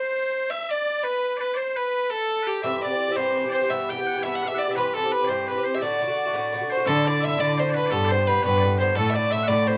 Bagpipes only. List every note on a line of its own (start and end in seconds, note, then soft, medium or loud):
0.00 0.50 C5 medium
0.50 0.70 E5 medium
0.70 1.04 D5 medium
1.04 1.37 B4 medium
1.37 1.54 B4 medium
1.37 1.40 D5 medium
1.54 1.76 C5 medium
1.54 1.57 D5 medium
1.76 2.10 B4 medium
2.10 2.43 A4 medium
2.43 2.47 B4 medium
2.47 2.63 G4 medium
2.63 2.83 E5 medium
2.83 3.12 D5 medium
3.12 3.16 E5 medium
3.16 3.49 C5 medium
3.49 3.70 C5 medium
3.49 3.53 D5 medium
3.70 3.89 E5 medium
3.89 4.06 G5 medium
4.06 4.18 F#5 medium
4.18 4.22 G#5 medium
4.22 4.43 E5 medium
4.43 4.55 E5 medium
4.43 4.46 F#5 medium
4.55 4.71 D5 medium
4.55 4.58 F#5 medium
4.71 4.75 E5 medium
4.75 4.94 B4 medium
4.94 5.12 A4 medium
5.12 5.25 B4 medium
5.25 5.48 C5 medium
5.25 5.28 D5 medium
5.48 5.64 B4 medium
5.64 5.78 C5 medium
5.78 6.70 D5 medium
5.78 5.82 E5 medium
6.70 6.85 C5 medium
6.85 7.05 A4 medium
7.05 7.21 D5 loud
7.21 7.38 E5 medium
7.38 7.58 D5 medium
7.58 7.70 C5 medium
7.70 7.86 B4 medium
7.70 7.74 D5 medium
7.86 7.90 D5 medium
7.90 8.05 A4 medium
8.05 8.42 C5 medium
8.05 8.09 D5 medium
8.42 8.57 B4 medium
8.57 8.62 D5 medium
8.62 8.78 B4 medium
8.78 8.95 C5 medium
8.95 9.13 A4 medium
9.13 9.31 D5 medium
9.31 9.43 E5 medium
9.43 9.67 D5 medium
9.43 9.47 F#5 medium
9.67 9.77 C5 medium